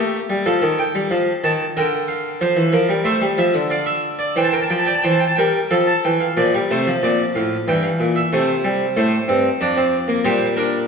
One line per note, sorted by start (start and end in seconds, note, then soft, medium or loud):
0.00 0.17 A3 medium
0.00 0.44 G4 medium
0.00 0.44 D#5 medium
0.30 0.46 G3 medium
0.46 0.62 F3 medium
0.46 1.71 A4 medium
0.46 0.66 F5 medium
0.62 0.82 D#3 medium
0.78 0.98 G5 medium
0.95 1.10 G3 medium
1.11 1.31 F3 medium
1.11 1.31 F5 medium
1.44 1.64 D#3 medium
1.44 1.64 A5 medium
1.77 2.39 D3 medium
1.77 2.39 A#4 medium
1.77 1.96 G5 medium
2.08 2.28 F5 medium
2.41 2.57 F3 medium
2.41 2.61 C5 loud
2.41 3.04 F5 medium
2.56 2.72 E3 medium
2.73 2.89 F3 medium
2.73 2.93 A#4 medium
2.89 3.05 G3 medium
3.05 3.21 A3 medium
3.05 3.25 C5 medium
3.05 3.37 E5 medium
3.21 3.37 G3 medium
3.38 3.54 F3 medium
3.38 3.59 E5 medium
3.54 4.34 D3 medium
3.70 4.18 D5 medium
3.70 3.87 F5 loud
3.86 4.07 E5 medium
4.19 4.36 D5 medium
4.36 4.57 E3 medium
4.36 4.53 C5 medium
4.36 4.45 G5 medium
4.44 4.53 A5 medium
4.52 4.74 A#4 medium
4.52 4.61 G5 medium
4.62 4.70 A5 medium
4.70 4.91 F3 medium
4.70 4.78 G5 medium
4.78 4.86 A5 medium
4.86 5.03 D5 medium
4.86 4.94 G5 medium
4.95 5.02 A5 medium
5.02 5.25 E3 medium
5.02 5.24 C5 medium
5.02 5.10 G5 medium
5.11 5.19 A5 medium
5.19 5.27 G5 medium
5.27 5.35 A5 medium
5.36 5.58 G3 medium
5.36 5.58 A#4 medium
5.36 5.69 G5 medium
5.71 5.91 F3 medium
5.71 6.34 A4 medium
5.71 5.86 F5 medium
5.87 6.03 A5 medium
6.04 6.25 E3 medium
6.04 6.20 G5 medium
6.20 6.36 F5 medium
6.37 6.57 A#2 medium
6.37 6.53 F3 medium
6.37 6.57 D5 medium
6.54 6.70 G3 medium
6.71 6.91 C3 medium
6.71 6.86 A3 medium
6.71 6.91 C5 medium
6.87 7.65 F3 medium
7.03 7.23 A#2 medium
7.03 7.23 D5 medium
7.35 7.55 A2 medium
7.35 7.55 F5 medium
7.68 7.88 G2 medium
7.68 8.30 E3 medium
7.68 7.83 G5 medium
7.83 8.03 F5 medium
8.00 8.20 A#2 medium
8.16 8.31 E5 medium
8.33 8.95 C3 medium
8.33 8.53 A3 medium
8.33 8.95 C5 medium
8.64 8.84 G3 medium
8.97 9.16 A2 medium
8.97 9.16 A3 medium
8.97 9.59 C5 medium
9.28 9.48 G2 medium
9.28 9.48 C4 medium
9.61 10.24 F2 medium
9.61 9.77 D4 medium
9.61 10.24 D5 medium
9.77 9.97 C4 medium
10.08 10.24 A#3 medium
10.25 10.88 A#2 medium
10.25 10.88 G3 medium
10.25 10.45 G4 medium
10.25 10.45 C5 medium
10.57 10.88 D4 medium
10.57 10.77 A#4 medium